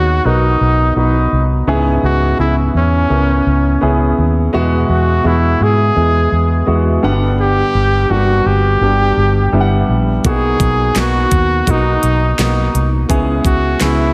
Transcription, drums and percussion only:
10.25 kick, closed hi-hat
10.60 kick, closed hi-hat
10.96 snare, clap, closed hi-hat
11.31 kick, closed hi-hat
11.67 kick, closed hi-hat
12.03 closed hi-hat
12.39 snare, clap, closed hi-hat
12.75 closed hi-hat
13.10 kick, closed hi-hat
13.45 kick, closed hi-hat
13.81 snare, clap, closed hi-hat

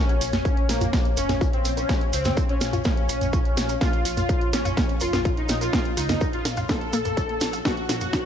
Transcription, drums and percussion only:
0.09 closed hi-hat
0.21 open hi-hat, maracas
0.33 snare, closed hi-hat, mid tom, maracas
0.45 kick, closed hi-hat, maracas
0.57 closed hi-hat
0.69 snare, open hi-hat, maracas
0.81 closed hi-hat, mid tom, maracas
0.93 kick, snare, closed hi-hat, maracas
1.05 closed hi-hat
1.17 open hi-hat, maracas
1.29 snare, closed hi-hat, mid tom, maracas
1.41 kick, closed hi-hat, maracas
1.53 closed hi-hat
1.65 open hi-hat, maracas
1.77 closed hi-hat, maracas
1.89 kick, snare, closed hi-hat, maracas
2.01 closed hi-hat
2.13 open hi-hat, maracas
2.25 snare, closed hi-hat, mid tom, maracas
2.37 kick, closed hi-hat, maracas
2.49 closed hi-hat
2.61 snare, open hi-hat, maracas
2.73 closed hi-hat, mid tom, maracas
2.84 kick, snare, closed hi-hat, maracas
2.97 closed hi-hat
3.09 open hi-hat, maracas
3.21 closed hi-hat, mid tom, maracas
3.33 kick, closed hi-hat, maracas
3.45 closed hi-hat
3.57 snare, open hi-hat, maracas
3.69 closed hi-hat, maracas
3.81 kick, snare, closed hi-hat, maracas
3.93 closed hi-hat
4.05 open hi-hat, maracas
4.17 closed hi-hat, mid tom, maracas
4.29 kick, closed hi-hat, maracas
4.41 closed hi-hat
4.53 snare, open hi-hat, maracas
4.65 closed hi-hat, mid tom, maracas
4.77 kick, snare, closed hi-hat, maracas
4.89 closed hi-hat
5.00 open hi-hat, maracas
5.13 snare, closed hi-hat, mid tom, maracas
5.25 kick, closed hi-hat, maracas
5.37 closed hi-hat
5.49 snare, open hi-hat, maracas
5.61 closed hi-hat, maracas
5.73 kick, snare, closed hi-hat, maracas
5.85 closed hi-hat
5.97 open hi-hat, maracas
6.09 snare, closed hi-hat, mid tom, maracas
6.21 kick, closed hi-hat, maracas
6.33 closed hi-hat
6.45 snare, open hi-hat, maracas
6.57 closed hi-hat, mid tom, maracas
6.69 kick, snare, closed hi-hat, maracas
6.81 closed hi-hat
6.93 open hi-hat, maracas
7.05 closed hi-hat, mid tom, maracas
7.17 kick, closed hi-hat, maracas
7.29 closed hi-hat
7.41 snare, open hi-hat, maracas
7.53 closed hi-hat, maracas
7.65 kick, snare, closed hi-hat, maracas
7.77 closed hi-hat
7.89 snare, open hi-hat, maracas
8.01 closed hi-hat, mid tom, maracas
8.13 kick, snare, closed hi-hat, maracas

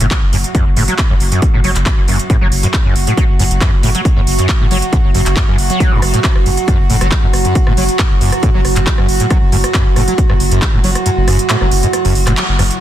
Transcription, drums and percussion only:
0.00 closed hi-hat
0.11 kick, clap, closed hi-hat
0.33 open hi-hat
0.44 closed hi-hat
0.55 kick, closed hi-hat
0.77 open hi-hat
0.88 closed hi-hat
0.98 kick, clap, closed hi-hat
1.20 open hi-hat
1.32 closed hi-hat
1.42 kick, closed hi-hat
1.64 open hi-hat
1.76 clap, closed hi-hat
1.86 kick, clap, closed hi-hat
2.08 open hi-hat
2.19 closed hi-hat
2.30 kick, closed hi-hat
2.52 open hi-hat
2.63 closed hi-hat
2.74 kick, clap, closed hi-hat
2.96 open hi-hat
3.07 closed hi-hat
3.17 kick, closed hi-hat
3.39 open hi-hat
3.51 closed hi-hat
3.61 kick, clap, closed hi-hat
3.83 open hi-hat
3.95 closed hi-hat
4.05 kick, closed hi-hat
4.27 open hi-hat
4.39 closed hi-hat
4.49 kick, clap, closed hi-hat
4.71 open hi-hat
4.82 closed hi-hat
4.93 kick, closed hi-hat
5.15 open hi-hat
5.26 clap, closed hi-hat
5.36 kick, clap, closed hi-hat
5.58 open hi-hat
5.70 closed hi-hat
5.80 kick, closed hi-hat
6.02 cross-stick, open hi-hat
6.14 closed hi-hat
6.24 kick, clap, closed hi-hat
6.36 cross-stick
6.46 open hi-hat
6.57 closed hi-hat
6.68 kick, cross-stick, closed hi-hat
6.90 open hi-hat
7.01 cross-stick, closed hi-hat
7.11 kick, clap, closed hi-hat
7.33 cross-stick, open hi-hat
7.45 closed hi-hat
7.55 kick, closed hi-hat
7.67 cross-stick
7.77 open hi-hat
7.89 closed hi-hat
7.99 kick, cross-stick, clap, closed hi-hat
8.21 open hi-hat
8.32 cross-stick, closed hi-hat
8.43 kick, closed hi-hat
8.65 cross-stick, open hi-hat
8.76 clap, closed hi-hat
8.87 kick, clap, closed hi-hat
8.98 cross-stick
9.09 open hi-hat
9.20 closed hi-hat
9.30 kick, cross-stick, closed hi-hat
9.52 open hi-hat
9.64 cross-stick, closed hi-hat
9.74 kick, clap, closed hi-hat
9.96 cross-stick, open hi-hat
10.08 closed hi-hat
10.18 kick, closed hi-hat
10.30 cross-stick
10.40 open hi-hat
10.51 closed hi-hat
10.62 kick, cross-stick, clap, closed hi-hat
10.84 open hi-hat
10.95 cross-stick, closed hi-hat
11.06 closed hi-hat
11.28 cross-stick, open hi-hat
11.39 closed hi-hat
11.50 clap, closed hi-hat
11.61 cross-stick
11.71 open hi-hat
11.83 closed hi-hat
11.93 cross-stick, closed hi-hat
12.05 open hi-hat
12.15 open hi-hat
12.27 cross-stick, clap, closed hi-hat
12.37 clap, closed hi-hat
12.59 cross-stick, open hi-hat
12.71 closed hi-hat

